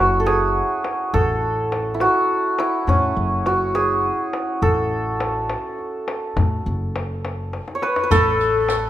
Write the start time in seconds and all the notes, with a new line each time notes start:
Already playing: F#1 C#4 E4 F#4 A4
0.20 A4
0.26 G#4, tombak tek
0.56 tombak ka
0.84 tombak tek
1.14 A1 A4, tombak dum
1.72 tombak tek
1.94 E4
2.00 F#4, tombak tek
2.30 tombak ka
2.59 E4, tombak tek
2.87 A2 C#4, tombak dum
3.17 F#1
3.46 F#4, tombak tek
3.75 G#4, tombak tek
4.05 tombak ka
4.33 tombak tek
4.62 A1 A4, tombak dum
5.20 tombak tek
5.50 tombak tek
5.79 tombak ka
6.08 tombak tek
6.37 A2, tombak dum
6.66 F#1, tombak ka
6.96 tombak tek
7.25 tombak tek
7.53 tombak tek
7.68 tombak ka
7.75 C#5
7.82 B4, tombak tek
7.96 tombak ka
8.03 B4
8.11 A1 A4, riq, tombak dum
8.41 riq
8.69 riq, tombak tek